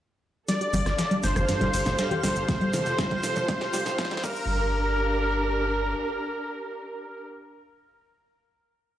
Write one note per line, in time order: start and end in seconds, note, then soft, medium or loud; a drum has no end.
0.48 0.52 G3 medium
0.48 2.47 D4 medium
0.48 4.20 G4 medium
0.48 4.20 A4 medium
0.48 1.14 D5 loud
0.48 4.50 F5 medium
0.48 snare soft
0.48 closed hi-hat medium
0.48 shaker soft
0.61 0.67 G4 medium
0.61 closed hi-hat soft
0.73 0.83 G1 medium
0.73 0.79 G3 medium
0.73 closed hi-hat medium
0.73 open hi-hat loud
0.73 high conga medium
0.73 shaker medium
0.86 0.95 G1 medium
0.86 cross-stick medium
0.86 snare soft
0.86 closed hi-hat soft
0.86 shaker soft
0.98 1.04 F3 medium
0.98 snare loud
0.98 closed hi-hat medium
0.98 shaker soft
1.11 1.14 G3 medium
1.11 closed hi-hat soft
1.23 1.33 G1 medium
1.23 1.29 A3 medium
1.23 2.14 C5 loud
1.23 snare medium
1.23 closed hi-hat medium
1.23 open hi-hat loud
1.23 shaker medium
1.36 1.45 G1 medium
1.36 cross-stick medium
1.36 closed hi-hat soft
1.36 high conga medium
1.36 low conga medium
1.36 shaker soft
1.48 1.57 G2 medium
1.48 snare medium
1.48 closed hi-hat medium
1.48 shaker soft
1.60 1.70 G1 medium
1.60 1.67 G3 medium
1.60 snare soft
1.60 closed hi-hat soft
1.60 low conga medium
1.74 1.83 G1 medium
1.74 open hi-hat loud
1.74 open hi-hat medium
1.74 shaker loud
1.86 1.95 G1 medium
1.86 snare medium
1.86 closed hi-hat soft
1.86 low conga medium
1.86 shaker soft
1.98 2.02 G3 medium
1.98 snare loud
1.98 closed hi-hat medium
1.98 shaker soft
2.11 2.17 G4 medium
2.11 closed hi-hat soft
2.11 high conga medium
2.23 2.33 G1 medium
2.23 2.29 G3 medium
2.23 4.23 C5 loud
2.23 snare medium
2.23 closed hi-hat medium
2.23 open hi-hat loud
2.23 shaker medium
2.36 2.45 G1 medium
2.36 closed hi-hat soft
2.36 shaker soft
2.48 2.54 F3 medium
2.48 4.22 F3 medium
2.48 4.22 F4 medium
2.48 4.22 C5 medium
2.48 kick loud
2.48 snare medium
2.48 closed hi-hat medium
2.48 shaker soft
2.61 2.64 G3 medium
2.61 closed hi-hat soft
2.73 2.83 F1 medium
2.73 2.79 A3 medium
2.73 snare medium
2.73 closed hi-hat medium
2.73 open hi-hat loud
2.73 high conga loud
2.73 shaker loud
2.86 2.95 F1 medium
2.86 snare soft
2.86 closed hi-hat soft
2.86 shaker soft
2.98 3.07 G2 medium
2.98 kick loud
2.98 snare medium
2.98 snare loud
2.98 closed hi-hat medium
2.98 shaker soft
3.11 3.17 G3 medium
3.11 kick medium
3.11 snare soft
3.11 closed hi-hat soft
3.23 3.33 F1 loud
3.23 snare medium
3.23 closed hi-hat medium
3.23 open hi-hat loud
3.23 shaker loud
3.36 3.45 F1 medium
3.36 closed hi-hat soft
3.36 high conga medium
3.36 low conga medium
3.36 shaker medium
3.48 3.52 G3 medium
3.48 kick loud
3.48 snare medium
3.48 closed hi-hat medium
3.48 shaker soft
3.61 3.70 F1 medium
3.61 3.67 G4 medium
3.61 snare medium
3.61 snare soft
3.61 closed hi-hat soft
3.73 3.83 F1 loud
3.73 3.79 G3 medium
3.73 snare medium
3.73 closed hi-hat medium
3.73 open hi-hat loud
3.73 shaker loud
3.86 3.95 F1 medium
3.86 snare medium
3.86 closed hi-hat soft
3.86 low conga medium
3.86 shaker medium
3.98 4.04 F3 medium
3.98 kick loud
3.98 snare loud
3.98 closed hi-hat medium
3.98 shaker soft
4.05 snare medium
4.11 4.14 G3 medium
4.11 snare medium
4.11 closed hi-hat soft
4.11 high conga medium
4.17 snare medium
4.24 5.95 G1 loud
4.24 4.70 G3 medium
4.24 7.24 D4 medium
4.24 7.24 G4 medium
4.24 7.24 A#4 loud
4.24 7.24 A#4 medium
4.24 kick loud
4.24 crash medium
4.24 shaker loud
4.36 shaker medium